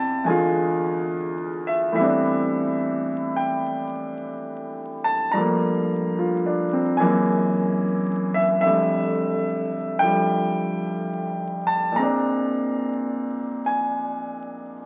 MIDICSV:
0, 0, Header, 1, 2, 480
1, 0, Start_track
1, 0, Tempo, 852273
1, 1118, Time_signature, 4, 2, 24, 8
1, 2552, Tempo, 826446
1, 6392, Tempo, 845070
1, 8503, End_track
2, 0, Start_track
2, 0, Title_t, "Grand piano"
2, 0, Program_c, 0, 0
2, 0, Control_c, 0, 64, 127
2, 0, Note_on_c, 0, 48, 53
2, 0, Note_on_c, 0, 59, 42
2, 0, Note_on_c, 0, 62, 39
2, 0, Note_on_c, 0, 64, 54
2, 0, Note_on_c, 0, 79, 91
2, 0, Note_on_c, 0, 81, 65
2, 137, Note_off_c, 0, 81, 0
2, 137, Note_on_c, 0, 40, 56
2, 147, Note_on_c, 0, 80, 64
2, 148, Note_off_c, 0, 48, 0
2, 150, Note_on_c, 0, 50, 51
2, 152, Note_off_c, 0, 59, 0
2, 157, Note_off_c, 0, 62, 0
2, 157, Note_on_c, 0, 56, 53
2, 159, Control_c, 0, 64, 0
2, 162, Note_off_c, 0, 64, 0
2, 164, Note_off_c, 0, 79, 0
2, 166, Note_on_c, 0, 65, 64
2, 252, Control_c, 0, 64, 127
2, 931, Note_off_c, 0, 80, 0
2, 941, Note_on_c, 0, 76, 75
2, 1084, Note_on_c, 0, 45, 51
2, 1094, Note_off_c, 0, 76, 0
2, 1095, Note_on_c, 0, 52, 42
2, 1103, Note_on_c, 0, 76, 81
2, 1107, Note_on_c, 0, 55, 43
2, 1110, Note_off_c, 0, 40, 0
2, 1116, Note_off_c, 0, 50, 0
2, 1120, Note_off_c, 0, 56, 0
2, 1123, Note_on_c, 0, 59, 43
2, 1124, Note_off_c, 0, 65, 0
2, 1126, Control_c, 0, 64, 0
2, 1132, Note_on_c, 0, 60, 46
2, 1145, Note_on_c, 0, 62, 55
2, 1232, Control_c, 0, 64, 127
2, 1565, Note_off_c, 0, 76, 0
2, 1895, Note_on_c, 0, 79, 80
2, 2519, Note_off_c, 0, 79, 0
2, 2850, Note_on_c, 0, 81, 83
2, 3007, Note_on_c, 0, 82, 96
2, 3014, Note_off_c, 0, 45, 0
2, 3018, Note_on_c, 0, 43, 54
2, 3020, Note_off_c, 0, 52, 0
2, 3026, Note_off_c, 0, 55, 0
2, 3027, Note_on_c, 0, 53, 45
2, 3028, Note_off_c, 0, 81, 0
2, 3034, Note_off_c, 0, 59, 0
2, 3035, Note_on_c, 0, 57, 41
2, 3039, Note_off_c, 0, 60, 0
2, 3040, Control_c, 0, 64, 0
2, 3046, Note_off_c, 0, 62, 0
2, 3046, Note_on_c, 0, 58, 52
2, 3141, Control_c, 0, 64, 127
2, 3513, Note_on_c, 0, 65, 41
2, 3674, Note_on_c, 0, 62, 48
2, 3806, Note_off_c, 0, 65, 0
2, 3830, Note_on_c, 0, 60, 45
2, 3918, Note_off_c, 0, 62, 0
2, 3954, Note_off_c, 0, 82, 0
2, 3969, Note_on_c, 0, 80, 78
2, 3982, Note_off_c, 0, 43, 0
2, 3985, Note_off_c, 0, 58, 0
2, 3985, Note_on_c, 0, 42, 59
2, 3987, Note_off_c, 0, 53, 0
2, 3988, Note_on_c, 0, 52, 54
2, 3991, Note_off_c, 0, 57, 0
2, 3991, Note_on_c, 0, 56, 47
2, 3994, Note_on_c, 0, 58, 68
2, 3998, Control_c, 0, 64, 0
2, 4075, Note_off_c, 0, 60, 0
2, 4113, Control_c, 0, 64, 127
2, 4433, Note_off_c, 0, 80, 0
2, 4766, Note_on_c, 0, 76, 92
2, 4912, Note_off_c, 0, 76, 0
2, 4921, Note_on_c, 0, 76, 88
2, 4929, Note_on_c, 0, 41, 49
2, 4939, Note_on_c, 0, 50, 46
2, 4942, Note_off_c, 0, 42, 0
2, 4944, Note_off_c, 0, 52, 0
2, 4946, Note_off_c, 0, 56, 0
2, 4947, Note_off_c, 0, 58, 0
2, 4950, Note_on_c, 0, 55, 44
2, 4951, Control_c, 0, 64, 0
2, 4958, Note_on_c, 0, 57, 51
2, 5046, Control_c, 0, 64, 127
2, 5390, Note_off_c, 0, 76, 0
2, 5723, Note_on_c, 0, 79, 117
2, 5729, Note_off_c, 0, 50, 0
2, 5738, Note_on_c, 0, 50, 44
2, 5748, Note_off_c, 0, 55, 0
2, 5748, Note_on_c, 0, 53, 38
2, 5757, Note_on_c, 0, 55, 49
2, 6355, Note_off_c, 0, 79, 0
2, 6690, Note_on_c, 0, 81, 82
2, 6834, Note_on_c, 0, 46, 48
2, 6852, Note_on_c, 0, 56, 45
2, 6855, Note_off_c, 0, 41, 0
2, 6857, Note_on_c, 0, 82, 91
2, 6858, Note_off_c, 0, 50, 0
2, 6862, Note_off_c, 0, 81, 0
2, 6863, Note_off_c, 0, 53, 0
2, 6867, Note_off_c, 0, 55, 0
2, 6869, Control_c, 0, 64, 0
2, 6870, Note_off_c, 0, 57, 0
2, 6874, Note_on_c, 0, 60, 43
2, 6895, Note_on_c, 0, 62, 52
2, 6954, Control_c, 0, 64, 127
2, 7823, Note_on_c, 0, 80, 72
2, 7845, Note_off_c, 0, 82, 0
2, 8284, Note_off_c, 0, 80, 0
2, 8503, Note_off_c, 0, 46, 0
2, 8503, Note_off_c, 0, 56, 0
2, 8503, Note_off_c, 0, 60, 0
2, 8503, Note_off_c, 0, 62, 0
2, 8503, End_track
0, 0, End_of_file